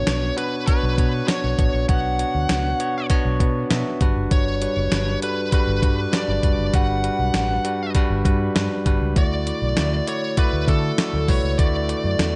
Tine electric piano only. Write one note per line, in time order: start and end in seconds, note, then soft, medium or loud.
0.00 0.34 B2 medium
0.00 0.07 B3 medium
0.00 0.07 D4 medium
0.00 0.07 F#4 medium
0.00 0.08 C#5 medium
0.07 0.33 B3 medium
0.07 0.34 D4 medium
0.07 0.34 F#4 medium
0.07 0.34 C#5 medium
0.37 0.64 B3 medium
0.37 0.64 D4 medium
0.37 0.64 F#4 medium
0.37 0.64 C#5 medium
0.68 0.94 B3 medium
0.68 0.94 D4 medium
0.68 0.95 F#4 medium
0.68 0.95 C#5 loud
0.98 1.24 B3 medium
0.98 1.25 D4 medium
0.98 1.25 F#4 medium
0.98 1.25 C#5 medium
1.28 1.55 B3 medium
1.28 1.55 D4 medium
1.28 1.55 F#4 medium
1.28 1.55 C#5 medium
1.58 1.85 B3 medium
1.58 1.85 D4 medium
1.58 1.85 F#4 medium
1.58 1.86 C#5 medium
1.88 2.76 B2 medium
1.88 2.15 B3 medium
1.88 2.15 D4 medium
1.88 2.15 F#4 medium
1.88 2.16 C#5 medium
2.19 2.45 B3 medium
2.19 2.46 D4 medium
2.19 2.46 F#4 medium
2.19 2.46 C#5 medium
2.49 2.76 B3 medium
2.49 2.76 D4 medium
2.49 2.76 F#4 medium
2.49 2.76 C#5 medium
2.79 3.06 B3 medium
2.79 3.06 D4 medium
2.79 3.06 F#4 medium
2.79 3.07 C#5 medium
3.10 3.36 B3 loud
3.10 3.36 D4 loud
3.10 3.37 F#4 medium
3.10 3.37 C#5 loud
3.40 3.66 B3 medium
3.40 3.67 D4 medium
3.40 3.67 F#4 medium
3.40 3.67 B4 medium
3.70 3.97 B3 medium
3.70 3.97 D4 medium
3.70 3.97 F#4 medium
3.70 3.97 E5 medium
4.01 4.88 G2 medium
4.01 4.54 G3 medium
4.01 4.54 D4 medium
4.01 4.54 F#4 medium
4.01 4.54 B4 loud
4.61 4.88 G3 medium
4.61 4.88 D4 medium
4.61 4.88 F#4 medium
4.61 4.88 B4 medium
4.91 5.18 G3 medium
4.91 5.18 D4 medium
4.91 5.19 F#4 medium
4.91 5.19 B4 medium
5.22 5.49 G3 medium
5.22 5.49 D4 medium
5.22 5.49 F#4 medium
5.22 5.49 A4 medium
5.52 5.79 G3 medium
5.52 5.79 D4 medium
5.52 5.79 F#4 medium
5.52 5.79 B4 medium
5.82 6.09 G3 medium
5.82 6.09 D4 medium
5.82 6.09 F#4 medium
5.82 6.10 B4 medium
6.12 6.39 G3 medium
6.12 6.39 D4 medium
6.12 6.40 F#4 medium
6.12 6.40 B4 medium
6.43 7.30 G2 medium
6.43 6.70 G3 medium
6.43 6.70 D4 medium
6.43 6.70 F#4 medium
6.43 6.70 B4 medium
6.73 7.00 G3 medium
6.73 7.00 D4 medium
6.73 7.00 F#4 medium
6.73 7.00 B4 medium
7.03 7.30 G3 medium
7.03 7.30 D4 medium
7.03 7.31 F#4 medium
7.03 7.31 B4 medium
7.34 7.61 G3 medium
7.34 7.61 D4 medium
7.34 7.61 F#4 medium
7.34 7.61 B4 medium
7.64 7.91 G3 medium
7.64 7.91 D4 medium
7.64 7.91 F#4 medium
7.64 7.92 B4 medium
7.95 8.21 G3 loud
7.95 8.21 D4 medium
7.95 8.22 F#4 loud
7.95 8.22 B4 loud
8.25 8.51 G3 medium
8.25 8.52 D4 medium
8.25 8.52 F#4 medium
8.25 8.52 B4 medium
8.55 8.82 G3 medium
8.55 8.82 D4 medium
8.55 8.82 F#4 medium
8.55 8.82 B4 medium
8.86 9.12 G3 medium
8.86 9.12 D4 medium
8.86 9.13 F#4 medium
8.86 9.13 B4 medium
9.16 10.03 D3 medium
9.16 9.42 A3 medium
9.16 9.43 E4 medium
9.16 9.43 F#4 medium
9.16 9.43 D5 loud
9.46 9.73 A3 medium
9.46 9.73 E4 medium
9.46 9.73 F#4 medium
9.46 9.74 D5 medium
9.77 10.03 A3 medium
9.77 10.03 E4 medium
9.77 10.04 F#4 medium
9.77 10.04 D5 medium
10.07 10.34 A3 medium
10.07 10.34 E4 medium
10.07 10.34 F#4 medium
10.07 10.34 D5 medium
10.37 10.64 A3 medium
10.37 10.64 E4 medium
10.37 10.64 F#4 medium
10.37 10.64 D5 loud
10.67 10.94 A3 medium
10.67 10.94 E4 medium
10.67 10.94 F#4 medium
10.67 10.95 D5 medium
10.98 11.24 A3 medium
10.98 11.25 E4 medium
10.98 11.25 F#4 medium
10.98 11.25 D5 medium
11.28 11.55 A3 medium
11.28 11.55 E4 medium
11.28 11.55 F#4 medium
11.28 11.55 B4 medium
11.58 12.36 D3 medium
11.58 11.85 A3 medium
11.58 11.85 E4 medium
11.58 11.85 F#4 medium
11.58 11.85 D5 loud
11.89 12.15 A3 medium
11.89 12.15 E4 medium
11.89 12.16 F#4 medium
11.89 12.16 D5 medium
12.19 12.36 A3 medium
12.19 12.36 E4 medium
12.19 12.36 F#4 medium
12.19 12.36 A4 medium